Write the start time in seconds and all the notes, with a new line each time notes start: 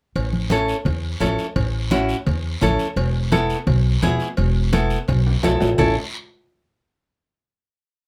0.16 A1, cowbell, high conga, long guiro
0.33 high conga
0.50 C#4 E4 A4, cowbell, high conga, short guiro
0.68 short guiro
0.85 E2, cowbell, high conga, low conga, long guiro
1.20 A1 C#4 E4 A4, cowbell, high conga, low timbale, short guiro
1.39 short guiro
1.56 A1, cowbell, high conga, low conga, long guiro
1.91 C#4 E4 F#4, cowbell, high conga, short guiro
2.09 short guiro
2.26 E2, cowbell, high conga, low conga, long guiro
2.61 A1 C#4 E4 A4, cowbell, high conga, low conga, short guiro
2.79 short guiro
2.96 E1, cowbell, high conga, long guiro
3.32 B3 E4 A4, cowbell, high conga, short guiro
3.50 short guiro
3.67 B1, cowbell, high conga, low conga, long guiro
4.02 E1 B3 E4 G#4, cowbell, high conga, low timbale, short guiro
4.20 short guiro
4.37 E1, cowbell, high conga, long guiro
4.72 B3 E4 A4, cowbell, high conga, short guiro
4.90 short guiro
5.08 B1, cowbell, high conga, low conga, long guiro
5.27 high timbale
5.43 B1 B3 E4 A4, cowbell, high conga, low timbale, short guiro
5.60 A1, low timbale, short guiro
5.78 A1 C#4 E4 A4, low conga, low timbale, long guiro